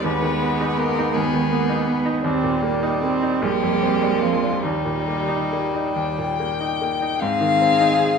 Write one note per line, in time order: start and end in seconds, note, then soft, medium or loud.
0.03 1.14 D#2 medium
0.03 1.16 G#3 medium
0.03 0.78 B3 medium
0.03 1.13 B3 medium
0.03 0.79 B4 medium
0.22 0.52 D#3 soft
0.42 0.71 B3 medium
0.61 0.89 D#4 medium
0.77 1.15 A#3 medium
0.77 1.08 B3 medium
0.77 1.15 A#4 medium
0.98 1.26 D#4 medium
1.13 2.22 D#2 medium
1.13 2.24 G#3 medium
1.13 1.51 B3 medium
1.13 2.22 B3 medium
1.13 2.24 G#4 medium
1.34 1.62 D#3 medium
1.50 1.87 A#3 medium
1.50 1.80 B3 medium
1.69 1.98 D#4 medium
1.86 2.24 B3 medium
1.86 2.17 B3 soft
2.06 2.24 D#4 medium
2.24 3.38 D#2 medium
2.24 3.45 G3 medium
2.24 2.64 C4 medium
2.43 2.75 A#2 medium
2.62 3.01 A#3 medium
2.62 2.94 A#3 soft
2.83 3.14 D#4 medium
3.02 3.35 A#3 medium
3.02 3.43 C4 medium
3.22 3.42 D#4 medium
3.41 4.60 A#1 medium
3.41 4.24 G3 medium
3.41 4.65 G#3 medium
3.41 4.62 A#3 medium
3.41 4.23 G4 medium
3.63 3.94 F2 soft
3.83 4.14 C4 soft
4.03 4.35 D4 soft
4.21 4.65 F3 medium
4.21 4.56 C4 soft
4.21 4.64 F4 medium
4.43 4.64 D4 soft
4.62 5.94 D#2 medium
4.62 5.97 D#3 medium
4.62 6.56 G3 medium
4.62 7.01 G3 medium
4.62 5.94 D#4 medium
4.85 5.21 A#2 soft
5.08 5.44 A#3 soft
5.29 5.65 D#4 soft
5.52 5.88 A#3 soft
5.74 6.09 D#4 soft
5.95 7.17 D#2 soft
5.95 7.22 G5 medium
6.19 6.52 A#2 soft
6.40 6.73 A#3 soft
6.61 6.94 D#4 soft
6.81 7.14 A#3 soft
7.02 7.22 D#4 soft
7.19 8.19 G#2 medium
7.19 8.19 D#3 medium
7.19 8.19 C4 medium
7.19 8.19 G#4 medium
7.19 8.19 F5 loud
7.41 7.72 D#3 soft
7.61 7.92 C4 soft
7.80 8.11 D#4 medium
8.00 8.19 G#4 soft